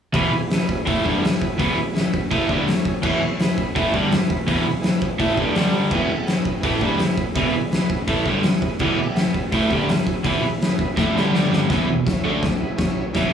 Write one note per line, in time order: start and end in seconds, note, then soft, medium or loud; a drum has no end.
0.13 0.31 E2 medium
0.13 0.32 B2 loud
0.13 0.32 E3 loud
0.13 0.41 E4 loud
0.13 0.42 G#4 medium
0.13 0.42 B4 loud
0.13 kick loud
0.13 open hi-hat medium
0.33 muted overdriven electric guitar stroke medium
0.50 0.78 E4 medium
0.50 0.78 G#4 medium
0.50 0.78 B4 loud
0.50 snare loud
0.50 open hi-hat medium
0.69 kick medium
0.86 1.04 A2 medium
0.86 1.04 E3 medium
0.86 1.05 A3 loud
0.86 1.00 E4 medium
0.86 1.01 G#4 medium
0.86 1.01 B4 medium
0.86 kick loud
0.86 open hi-hat medium
1.03 1.22 G2 medium
1.03 1.22 D3 medium
1.03 1.23 G3 loud
1.03 1.17 E4 medium
1.03 1.18 G#4 medium
1.03 1.18 B4 medium
1.03 kick medium
1.20 1.48 E4 medium
1.20 1.49 G#4 medium
1.20 1.49 B4 loud
1.25 snare loud
1.25 open hi-hat medium
1.42 kick medium
1.55 1.76 E2 medium
1.55 1.84 E4 loud
1.55 1.85 G#4 medium
1.55 1.85 B4 loud
1.60 1.77 B2 loud
1.60 1.77 E3 loud
1.60 kick loud
1.60 open hi-hat medium
1.78 muted overdriven electric guitar stroke medium
1.92 2.21 E4 medium
1.92 2.22 G#4 medium
1.92 2.22 B4 loud
1.92 open hi-hat medium
1.97 snare loud
2.14 kick medium
2.30 2.49 A2 loud
2.30 2.49 E3 loud
2.30 2.50 A3 loud
2.30 2.44 E4 medium
2.30 2.45 G#4 medium
2.30 2.45 B4 medium
2.30 kick loud
2.30 open hi-hat medium
2.47 2.67 G2 medium
2.47 2.67 D3 medium
2.47 2.68 G3 loud
2.47 2.62 E4 medium
2.47 2.62 G#4 medium
2.47 2.63 B4 medium
2.47 kick medium
2.66 2.94 E4 medium
2.66 2.94 G#4 medium
2.66 2.95 C#5 loud
2.66 snare loud
2.66 open hi-hat medium
2.85 kick medium
3.02 3.20 E2 medium
3.02 3.21 B2 medium
3.02 3.21 E3 loud
3.02 3.30 E4 loud
3.02 3.31 G#4 loud
3.02 3.31 C#5 loud
3.02 kick loud
3.02 crash medium
3.22 muted overdriven electric guitar stroke medium
3.39 3.66 E4 medium
3.39 3.68 G#4 medium
3.39 3.67 B4 loud
3.39 snare loud
3.39 open hi-hat medium
3.58 kick medium
3.74 3.93 A2 loud
3.74 3.93 E3 loud
3.74 3.94 A3 loud
3.74 3.88 E4 medium
3.74 3.89 G#4 medium
3.74 3.89 B4 medium
3.74 kick loud
3.74 open hi-hat medium
3.91 4.11 G2 medium
3.91 4.11 D3 loud
3.91 4.06 E4 medium
3.91 4.06 G#4 medium
3.91 4.07 D5 medium
3.91 kick medium
3.95 4.12 G3 loud
4.11 4.39 E4 medium
4.11 4.39 G#4 medium
4.11 4.39 B4 medium
4.11 snare loud
4.11 open hi-hat medium
4.30 kick medium
4.47 4.65 E2 medium
4.47 4.65 B2 medium
4.47 4.66 E3 loud
4.47 4.74 E4 loud
4.47 4.75 G#4 loud
4.47 4.75 B4 loud
4.47 kick loud
4.47 open hi-hat medium
4.67 muted overdriven electric guitar stroke medium
4.82 5.10 E4 medium
4.82 5.10 G#4 medium
4.82 5.10 B4 medium
4.82 snare loud
4.82 open hi-hat medium
5.02 kick medium
5.18 5.37 A2 loud
5.18 5.38 E3 loud
5.18 5.38 A3 loud
5.18 5.33 E4 medium
5.18 5.33 G#4 medium
5.18 5.34 B4 medium
5.18 kick loud
5.18 open hi-hat medium
5.37 5.55 G2 medium
5.37 5.56 D3 medium
5.37 5.56 G3 loud
5.37 5.51 E4 medium
5.37 5.51 G#4 medium
5.37 5.52 B4 medium
5.37 kick medium
5.54 5.91 G2 medium
5.54 5.92 D3 medium
5.54 5.82 D4 medium
5.54 5.82 G4 medium
5.54 5.83 D5 medium
5.54 snare loud
5.54 open hi-hat medium
5.58 5.93 G3 medium
5.90 6.10 E2 medium
5.90 6.10 B2 medium
5.90 6.10 E3 loud
5.90 6.18 E4 loud
5.90 6.18 G#4 medium
5.90 6.19 B4 loud
5.90 kick loud
5.90 crash medium
6.11 muted overdriven electric guitar stroke medium
6.24 6.53 E4 medium
6.24 6.54 G#4 medium
6.24 6.54 B4 medium
6.24 open hi-hat medium
6.28 snare loud
6.45 kick medium
6.60 6.75 E4 medium
6.60 6.76 G#4 medium
6.60 6.76 B4 medium
6.60 kick loud
6.64 6.82 A2 medium
6.64 6.82 E3 medium
6.64 6.82 A3 medium
6.64 open hi-hat medium
6.80 7.00 G2 loud
6.80 7.00 D3 medium
6.80 6.94 E4 medium
6.80 6.95 G#4 medium
6.80 6.95 B4 loud
6.80 kick medium
6.84 7.01 G3 loud
6.97 7.25 E4 medium
6.97 7.26 G#4 medium
6.97 7.26 B4 loud
6.97 snare loud
6.97 open hi-hat medium
7.18 kick medium
7.34 7.53 E2 medium
7.34 7.54 B2 loud
7.34 7.54 E3 loud
7.34 7.62 E4 loud
7.34 7.62 G#4 loud
7.34 7.63 B4 loud
7.34 kick loud
7.34 open hi-hat medium
7.54 muted overdriven electric guitar stroke medium
7.71 7.99 E4 medium
7.71 7.99 G#4 medium
7.71 7.99 B4 loud
7.71 snare loud
7.71 open hi-hat medium
7.90 kick medium
8.07 8.26 A2 medium
8.07 8.26 E3 medium
8.07 8.27 A3 loud
8.07 8.21 E4 medium
8.07 8.22 G#4 medium
8.07 8.23 B4 medium
8.07 kick loud
8.07 open hi-hat medium
8.26 8.44 G2 medium
8.26 8.45 D3 loud
8.26 8.45 G3 loud
8.26 8.40 E4 medium
8.26 8.40 G#4 medium
8.26 8.41 B4 loud
8.26 kick medium
8.43 8.71 E4 medium
8.43 8.71 G#4 medium
8.43 8.72 B4 medium
8.43 snare loud
8.43 open hi-hat medium
8.62 kick medium
8.79 8.98 E2 medium
8.79 8.99 B2 medium
8.79 8.99 E3 loud
8.79 9.07 E4 loud
8.79 9.08 G#4 medium
8.79 9.08 D5 loud
8.79 kick loud
8.79 crash medium
8.99 muted overdriven electric guitar stroke medium
9.12 9.41 E4 medium
9.12 9.42 G#4 medium
9.12 9.43 B4 loud
9.12 open hi-hat medium
9.17 snare loud
9.34 kick medium
9.51 9.70 A2 loud
9.51 9.71 E3 loud
9.51 9.71 A3 loud
9.51 9.65 E4 medium
9.51 9.66 G#4 medium
9.51 9.67 B4 medium
9.51 kick loud
9.51 open hi-hat medium
9.68 9.88 G2 medium
9.68 9.89 D3 medium
9.68 9.89 G3 loud
9.68 9.83 E4 medium
9.68 9.83 G#4 medium
9.68 9.84 B4 medium
9.68 kick medium
9.87 10.15 E4 medium
9.87 10.16 G#4 medium
9.87 10.17 B4 medium
9.87 snare loud
9.87 open hi-hat medium
10.07 kick medium
10.23 10.42 E2 medium
10.23 10.43 B2 loud
10.23 10.43 E3 loud
10.23 10.51 E4 loud
10.23 10.52 G#4 medium
10.23 10.52 B4 loud
10.23 kick loud
10.23 open hi-hat medium
10.44 muted overdriven electric guitar stroke medium
10.60 10.88 E4 medium
10.60 10.89 G#4 medium
10.60 10.89 B4 loud
10.60 snare loud
10.60 open hi-hat medium
10.79 kick medium
10.94 11.15 A2 medium
10.94 11.09 E4 medium
10.94 11.10 G#4 medium
10.94 11.11 D5 medium
10.94 kick loud
10.94 snare medium
10.99 11.16 E3 loud
10.99 11.16 A3 medium
11.15 11.32 G2 medium
11.15 11.33 D3 loud
11.15 11.34 G3 loud
11.15 11.29 E4 medium
11.15 11.29 G#4 medium
11.15 11.30 B4 medium
11.15 snare medium
11.33 11.69 G2 medium
11.33 11.70 D3 loud
11.33 11.70 G3 loud
11.33 11.60 D4 medium
11.33 11.61 G4 medium
11.33 11.61 D5 medium
11.33 snare medium
11.53 snare medium
11.66 11.87 E2 medium
11.66 11.95 E4 loud
11.66 11.95 G#4 medium
11.66 11.96 B4 loud
11.66 kick loud
11.66 floor tom medium
11.70 11.88 B2 medium
11.70 11.88 E3 loud
11.70 snare loud
11.88 12.03 E2 medium
11.88 12.03 B2 medium
11.88 floor tom medium
12.05 12.32 E4 medium
12.05 12.33 G#4 medium
12.05 12.33 C#5 medium
12.05 kick loud
12.05 snare loud
12.05 floor tom medium
12.24 12.42 D3 medium
12.24 12.42 A3 loud
12.24 12.43 D4 loud
12.24 floor tom medium
12.41 12.55 E4 medium
12.41 12.56 G#4 medium
12.41 12.57 D5 medium
12.41 kick loud
12.41 snare loud
12.41 floor tom medium
12.58 12.73 E4 medium
12.58 12.73 G#4 medium
12.58 12.74 B4 medium
12.58 floor tom medium
12.75 13.04 E4 medium
12.75 13.05 G#4 medium
12.75 13.05 C#5 loud
12.75 kick loud
12.75 snare loud
12.75 floor tom medium
12.96 floor tom medium
13.13 13.32 E2 medium
13.13 13.32 B2 loud
13.13 13.33 E4 loud
13.13 13.33 G#4 loud
13.13 13.33 B4 loud
13.13 kick loud
13.13 snare loud
13.13 floor tom medium
13.17 13.33 E3 medium